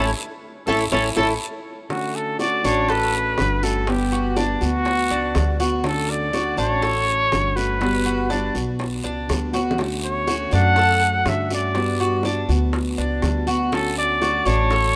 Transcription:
Already playing: upright bass A1
0.67 upright bass A1, steel-string acoustic guitar A3 C#4 E4, cuban tres C#4 E4 A4, trumpet A4, high bongo, long guiro
0.92 upright bass A1, steel-string acoustic guitar A3 C#4 E4, cuban tres C#4 E4 A4, trumpet A4, high bongo, long guiro
1.16 upright bass A1, steel-string acoustic guitar A3 C#4 E4, cuban tres C#4 E4 A4, trumpet A4, high bongo, long guiro
1.90 steel-string acoustic guitar D3 A3 C#4 F#4, trumpet F#4, high bongo, long guiro
2.16 trumpet A4
2.39 steel-string acoustic guitar D3 A3 C#4 F#4, cuban tres F#4, trumpet D5, high bongo, short guiro
2.64 upright bass A1, steel-string acoustic guitar A3 C#4 F#4, cuban tres D4, trumpet C#5, short guiro
2.89 cuban tres A4, trumpet B4, high bongo, long guiro
3.38 upright bass G1, steel-string acoustic guitar D3 A3 C#4 F#4, high bongo, low bongo, short guiro
3.63 steel-string acoustic guitar A3 C#4 F#4, trumpet A4, short guiro
3.87 steel-string acoustic guitar G3 B3, trumpet G4, high bongo, long guiro
4.12 cuban tres F#4, high bongo
4.36 steel-string acoustic guitar G3 B3 F#4, cuban tres D4, high bongo, short guiro
4.61 upright bass D2, steel-string acoustic guitar B3 F#4, trumpet F#4, high bongo, short guiro
4.85 high bongo, long guiro
5.10 upright bass C#2, cuban tres D4, high bongo
5.35 upright bass D2, steel-string acoustic guitar G3 B3 F#4, high bongo, low bongo, short guiro
5.60 steel-string acoustic guitar B3 F#4, cuban tres F#4, short guiro
5.84 steel-string acoustic guitar D3 A3 C#4 F#4, trumpet A4, high bongo, long guiro
6.10 trumpet D5
6.33 steel-string acoustic guitar D3 A3 C#4 F#4, cuban tres F#4, high bongo, short guiro
6.57 upright bass A1, steel-string acoustic guitar A3 C#4 F#4, cuban tres D4, trumpet C#5, short guiro
6.82 cuban tres A4, high bongo, long guiro
7.32 upright bass G1, steel-string acoustic guitar D3 A3 C#4 F#4, high bongo, low bongo, short guiro
7.56 steel-string acoustic guitar A3 C#4 F#4, trumpet B4, short guiro
7.81 steel-string acoustic guitar G3 B3 F#4, high bongo, long guiro
8.06 cuban tres F#4, high bongo
8.30 steel-string acoustic guitar G3 B3 F#4, cuban tres D4, high bongo, short guiro
8.55 upright bass B1, steel-string acoustic guitar B3 F#4, high bongo, short guiro
8.79 high bongo, long guiro
9.04 upright bass C#2, cuban tres D4, high bongo
9.29 upright bass D2, steel-string acoustic guitar G3 B3 F#4, high bongo, low bongo, short guiro
9.53 steel-string acoustic guitar B3 F#4, cuban tres F#4, high bongo, short guiro
9.71 low bongo
9.78 steel-string acoustic guitar D3 A3 C#4 F#4, high bongo, long guiro
10.04 trumpet C#5
10.27 steel-string acoustic guitar D3 A3 C#4 F#4, cuban tres F#4, high bongo, short guiro
10.51 upright bass F#2, steel-string acoustic guitar A3 C#4 F#4, cuban tres D4, trumpet F#5, short guiro
10.76 cuban tres A4, high bongo, long guiro
11.26 upright bass G2, steel-string acoustic guitar D3 A3 C#4 F#4, trumpet E5, high bongo, low bongo, short guiro
11.50 steel-string acoustic guitar A3 C#4 F#4, trumpet D5, short guiro
11.75 steel-string acoustic guitar G3 B3 F#4, high bongo, long guiro
12.00 cuban tres F#4, high bongo
12.23 steel-string acoustic guitar G3 B3 F#4, cuban tres D4, high bongo, short guiro
12.49 upright bass D2, steel-string acoustic guitar B3 F#4, high bongo, short guiro
12.73 high bongo, long guiro
12.98 upright bass C#2, cuban tres D4, high bongo
13.22 upright bass D2, steel-string acoustic guitar G3 B3 F#4, high bongo, low bongo, short guiro
13.47 steel-string acoustic guitar B3 F#4, cuban tres F#4, short guiro
13.72 steel-string acoustic guitar D3 A3 C#4 F#4, trumpet A4, high bongo, long guiro
13.98 trumpet D5
14.21 steel-string acoustic guitar D3 A3 C#4 F#4, cuban tres F#4, high bongo, short guiro
14.46 upright bass A1, steel-string acoustic guitar A3 C#4 F#4, cuban tres D4, trumpet C#5, short guiro
14.70 cuban tres A4, high bongo, long guiro

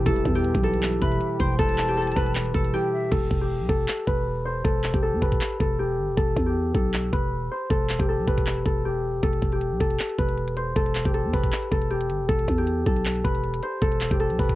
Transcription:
Already playing: ambient pad E3 E4 B4, harp G4 B4
0.03 808-style bass E1, synth keys B2 E3 G3, ambient pad G4, harp A4, kick, closed hi-hat
0.07 synth keys E4 G4
0.16 closed hi-hat
0.25 808-style bass E2, kick
0.35 harp G4, closed hi-hat
0.44 closed hi-hat
0.54 808-style bass B1, kick, closed hi-hat
0.63 harp A4, closed hi-hat
0.74 closed hi-hat
0.82 clap, closed hi-hat
0.93 closed hi-hat
1.01 808-style bass E1, harp B4, flute E5, kick, closed hi-hat
1.12 closed hi-hat
1.21 closed hi-hat
1.40 808-style bass E1, harp C5, flute G5, kick, closed hi-hat
1.58 808-style bass E1, harp A4, flute A5, kick, closed hi-hat
1.69 closed hi-hat
1.78 clap
1.88 harp G4, closed hi-hat
1.97 harp A4, closed hi-hat
2.02 closed hi-hat
2.07 closed hi-hat
2.12 closed hi-hat
2.16 808-style bass E1, harp B4, kick, open hi-hat
2.26 closed hi-hat
2.35 clap, closed hi-hat
2.45 closed hi-hat
2.54 808-style bass E1, harp A4, kick, closed hi-hat
2.65 closed hi-hat
2.72 synth keys B2 E3 G3 E4 G4, harp G4, flute G5
2.93 flute E5
3.12 808-style bass E1, harp A4, kick, crash
3.31 808-style bass E1, kick
3.41 harp G4
3.60 808-style bass B1
3.69 808-style bass E1, harp A4, kick
3.88 clap
4.07 808-style bass E1, harp B4, kick
4.45 harp C5
4.64 808-style bass E1, harp A4, kick
4.84 clap
4.94 808-style bass E1, harp G4, kick
5.03 harp A4
5.13 808-style bass E2
5.22 808-style bass E1, harp B4, kick
5.32 kick
5.41 clap
5.60 808-style bass E1, harp A4, kick
5.79 harp G4
5.98 808-style bass G1
6.08 808-style bass E1
6.17 808-style bass E1, harp A4, kick
6.37 808-style bass E2, kick
6.46 harp G4
6.75 808-style bass B1, harp A4, kick
6.94 clap
7.13 808-style bass E1, harp B4, kick
7.51 harp C5
7.70 808-style bass E1, harp A4, kick
7.89 clap
7.99 808-style bass E1, harp G4, kick
8.09 harp A4
8.19 808-style bass B1
8.28 808-style bass E1, harp B4, kick
8.38 kick
8.47 clap
8.66 808-style bass E1, harp A4, kick
8.85 harp G4
9.23 808-style bass E1, harp A4, kick, closed hi-hat
9.33 closed hi-hat
9.42 808-style bass E1, kick, closed hi-hat
9.52 harp G4, closed hi-hat
9.61 closed hi-hat
9.71 808-style bass B1
9.80 808-style bass E1, harp A4, kick, closed hi-hat
9.91 closed hi-hat
10.00 clap, closed hi-hat
10.10 closed hi-hat
10.19 808-style bass E1, harp B4, kick
10.29 closed hi-hat
10.38 closed hi-hat
10.48 closed hi-hat
10.57 harp C5, closed hi-hat
10.76 808-style bass E1, harp A4, kick, closed hi-hat
10.86 closed hi-hat
10.95 clap, closed hi-hat
11.05 808-style bass E1, harp G4, kick, closed hi-hat
11.14 harp A4, closed hi-hat
11.24 808-style bass E2
11.33 808-style bass E1, harp B4, kick, open hi-hat
11.43 kick, closed hi-hat
11.52 clap, closed hi-hat
11.63 closed hi-hat
11.72 808-style bass E1, harp A4, kick
11.82 closed hi-hat
11.91 harp G4, closed hi-hat
12.01 closed hi-hat
12.10 808-style bass G1, closed hi-hat
12.20 808-style bass E1
12.29 808-style bass E1, harp A4, kick, closed hi-hat
12.39 closed hi-hat
12.48 808-style bass E2, kick, closed hi-hat
12.58 harp G4, closed hi-hat
12.67 closed hi-hat
12.86 808-style bass B1, harp A4, kick, closed hi-hat
12.96 closed hi-hat
13.05 clap, closed hi-hat
13.15 closed hi-hat
13.24 808-style bass E1, harp B4, kick
13.35 closed hi-hat
13.44 closed hi-hat
13.54 closed hi-hat
13.63 harp C5, closed hi-hat
13.82 808-style bass E1, harp A4, kick, closed hi-hat
13.92 closed hi-hat
14.01 clap, closed hi-hat
14.11 808-style bass E1, harp G4, kick, closed hi-hat
14.20 harp A4, closed hi-hat
14.30 808-style bass B1, closed hi-hat
14.39 808-style bass E1, harp B4, kick, open hi-hat
14.49 kick, closed hi-hat

